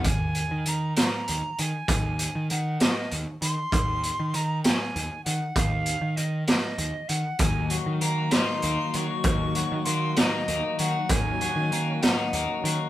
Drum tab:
HH |xxxxxx|xxxxxx|xxxxxx|xxxxxx|
SD |---o--|---o--|---o--|---o--|
BD |o-----|o-----|o-----|o-----|

HH |xxxxxx|xxxxxx|xxxxxx|
SD |---o--|---o--|---o--|
BD |o-----|o-----|o-----|